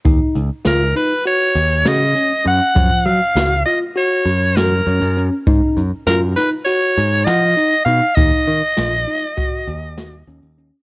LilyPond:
<<
  \new Staff \with { instrumentName = "Soprano saxophone" } { \time 9/8 \key ees \minor \tempo 4. = 67 r4 bes'8 ces''8 des''4 ees''4 ges''8~ | ges''8 f''4 ees''8 des''4 bes'4 r8 | r4 bes'8 ces''8 des''4 ees''4 f''8 | ees''2.~ ees''8 r4 | }
  \new Staff \with { instrumentName = "Tine electric piano" } { \time 9/8 \key ees \minor ees'4 f'8 ees'8 ges'4 ges'8 des'8 des'8 | f4 ges'8 f'8 ges'4 ges'8 des'8 des'8 | ees'4 f'8 ees'8 ges'4 ges''8 ees'8 ees'8 | ees'4 f'8 ees'8 ges'4 ges'8 des'8 des'8 | }
  \new Staff \with { instrumentName = "Picked electric bass" } { \clef bass \time 9/8 \key ees \minor ees,16 r16 des,16 r16 des,8 r4 ees,8 des8 r8 ges,16 r16 | ges,16 r16 ges16 r16 des,8 r4 ges,4 ges,16 ges,8 r16 | aes,16 r16 ges,16 r16 ges,8 r4 aes,8 f8 r8 ces16 r16 | ees,16 r16 ees16 r16 bes,,8 r4 ees,4 ees,16 ees,8 r16 | }
  \new DrumStaff \with { instrumentName = "Drums" } \drummode { \time 9/8 <hh bd>8 hh8 <hh sn>8 hh8 hh8 hh8 <hh sn>8 hh8 hh8 | <hh bd>8 hh8 <hh sn>8 hh8 hh8 hh8 <hh sn>8 hh8 hh8 | <hh bd>8 hh8 <hh sn>8 <hh sn>8 hh8 hh8 <hh sn>8 hh8 hh8 | <hh bd>8 hh8 <hh sn>8 hh8 <hh bd>8 hh8 <hh sn>8 hh8 hh8 | }
>>